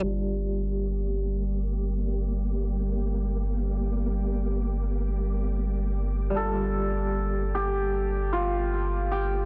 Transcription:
X:1
M:4/4
L:1/8
Q:1/4=76
K:Gm
V:1 name="String machine"
[Gd']8- | [Gd']8- | [Gd']8 |]
V:2 name="Santur"
z8 | z8 | A2 z G2 F2 G |]
V:3 name="Harpsichord"
[G,DF]8- | [G,DF]8 | [G,DF]8 |]
V:4 name="Synth texture"
B,8- | B,8- | B,8 |]
V:5 name="Sub bass" clef=bass
G,,,8- | G,,,8- | G,,,8 |]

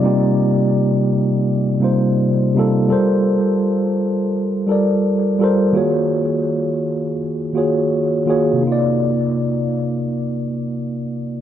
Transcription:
X:1
M:4/4
L:1/8
Q:"Swing 16ths" 1/4=84
K:Cdor
V:1 name="Tine electric piano"
[C,G,B,EFG]4 z [C,G,B,EFc]2 [C,G,B,EFA] | [G,FABc]4 z [G,FABd]2 [G,FABc] | [E,B,F_G_A_d]4 z [E,B,FGAd]2 [E,B,FGAd] | [C,B,EFd]8 |]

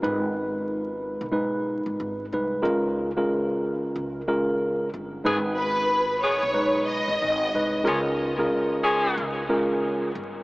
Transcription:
X:1
M:4/4
L:1/16
Q:"Swing 16ths" 1/4=92
K:G#dor
V:1 name="Violin section"
z16 | z16 | z2 B4 c4 d6 | z16 |]
V:2 name="Saxophone section"
z16 | z16 | [D,B,G] z4 z [D,B,G]2 z8 | [E,CG] z4 z [E,CG]3 z6 z |]
V:3 name="Tine electric piano"
[G,,G,DB]6- [G,,G,DB] z [G,,G,DB]6 [G,,G,DB]2 | [C,G,EA]3 [C,G,EA]6 z [C,G,EA]4 z2 | [G,,G,DB]6- [G,,G,DB] z [G,,G,DB]6 [G,,G,DB]2 | [C,G,EA]3 [C,G,EA]6 z [C,G,EA]4 z2 |]
V:4 name="Upright bass" clef=bass
G,,,6- G,,, B,,,4 G,,, G,,,2 ^B,,,2 | C,,4 z4 C,,2 z4 =G,,,2 | G,,,6- G,,, B,,,4 G,,, G,,,2 ^B,,,2 | C,,4 z4 C,,2 z4 =G,,,2 |]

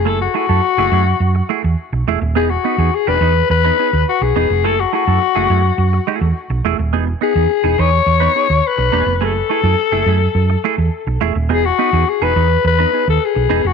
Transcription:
X:1
M:4/4
L:1/16
Q:1/4=105
K:E
V:1 name="Alto saxophone"
A F F8 z6 | G F3 G B3 B4 F G3 | A F F8 z6 | z2 G4 c6 B3- B/2 B/2 |
A12- A2 z2 | G F3 G B3 B3 A G3 F |]
V:2 name="Clean electric guitar"
[A,EG] z [A,EG] [A,EA] z [A,EG] [A,EG] z3 [A,EG] z3 [A,EG] z | [B,DG] z [B,DB] [B,DG] z [B,DG] [B,DB] z2 [B,DB] [B,DG] z3 [B,DG] z | [A,EG] z [A,EG] [A,EA] z [A,EG] [A,EG] z3 [A,EG] z3 [A,EG] z | [B,DG] z [B,DB] [B,DG] z [B,DG] [B,DB] z2 [B,DB] [B,DG] z3 [B,DG] z |
[A,EG] z [A,EG] [A,EA] z [A,EG] [A,EG] z3 [A,EG] z3 [A,EG] z | [B,DG] z [B,DB] [B,DG] z [B,DG] [B,DB] z2 [B,DB] [B,DG] z3 [B,DG] z |]
V:3 name="Fingered electric bass" clef=bass
F,,,2 z F,, z F,,, F,,2 F,,2 z E,, z B,,, E,,, D,,, | E,,,2 z E,, z E,,, E,,2 E,,2 z D,, z B,,, E,,, =F,,, | F,,,2 z F,, z F,,, F,,2 F,,2 z E,, z B,,, E,,, D,,, | E,,,2 z E,, z E,,, E,,2 E,,2 z D,, z B,,, E,,, =F,,, |
F,,,2 z F,, z F,,, F,,2 F,,2 z E,, z B,,, E,,, D,,, | E,,,2 z E,, z E,,, E,,2 E,,2 z D,, z B,,, E,,, =F,,, |]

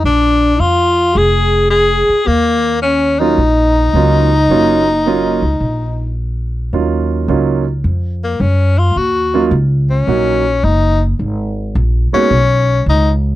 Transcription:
X:1
M:4/4
L:1/8
Q:"Swing" 1/4=108
K:Ebm
V:1 name="Tenor saxophone"
=D2 F2 A2 A2 | B,2 D E4- E- | E6 z2 | z4 z B, D F |
G2 z D3 E z | z3 D3 E z |]
V:2 name="Trombone"
=D2 F2 A2 A2 | B,2 D E4- E- | E6 z2 | z8 |
z8 | z8 |]
V:3 name="Grand piano"
z8 | z3 [G,B,DF] z2 [G,B,DF] z | [G,B,DF] z [G,B,DF] z4 z | [G,B,DEF]2 [G,B,DEF] z4 z |
z [G,B,DEF] z2 [G,B,DEG] z3 | z3 [A,B,CEG] z4 |]
V:4 name="Upright bass" clef=bass
B,,,2 F,,2 F,,,3 z | E,,4 B,,,2 D,,2 | G,,,3 D,, B,,,4 | E,,2 D,,2 F,,2 G,,2 |
E,,2 D,,2 B,,,2 G,,,2 | A,,,2 B,,, z C,,2 D,,2 |]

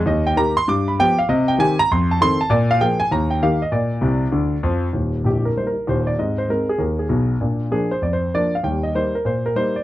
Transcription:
X:1
M:4/4
L:1/16
Q:"Swing" 1/4=195
K:Eb
V:1 name="Grand piano"
e2 g2 b2 c'2 d'2 =b2 g2 f2 | e2 g2 a2 b2 c'2 =a2 c'2 a2 | d2 f2 g2 a2 b2 g2 f2 e2 | d12 z4 |
z4 G2 B2 c B3 c2 d2 | e2 c2 B2 A2 B2 A4 z2 | z4 A2 c2 d c3 d2 f2 | g2 e2 c2 B2 c2 B2 c2 d2 |]
V:2 name="Grand piano" clef=bass
E,,4 [E,B,G]4 G,,4 [F,=B,G]4 | C,4 [E,CG]4 F,,4 [E,C=A]4 | B,,4 [F,B,A]4 E,,4 [E,B,G]4 | B,,4 [C,,C,]4 [D,,D,]4 [F,,F,]4 |
[E,,,E,,]4 [B,,,,B,,,]4 [G,B,E]4 [E,,,E,,]4 | [A,,C]4 [A,CE]4 E,,4 [_C,,_C,]4 | [B,,D]4 [F,B,D]4 F,,4 [F,B,D]4 | [E,,G,]4 [G,B,E]4 B,,4 [G,B,E]4 |]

